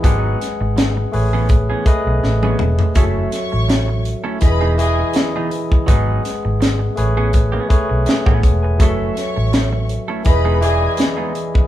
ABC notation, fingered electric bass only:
X:1
M:4/4
L:1/16
Q:"Swing 16ths" 1/4=82
K:Alyd
V:1 name="Fingered electric bass" clef=bass
G,,,2 z G,,,3 A,,,4 z B,,, A,,,2 E,,, z | F,,,2 z A,,,4 z E,,,4 z4 | G,,,2 z G,,,3 A,,,4 z B,,, z A,,, E,,,2 | F,,,2 z A,,,4 z E,,,4 z4 |]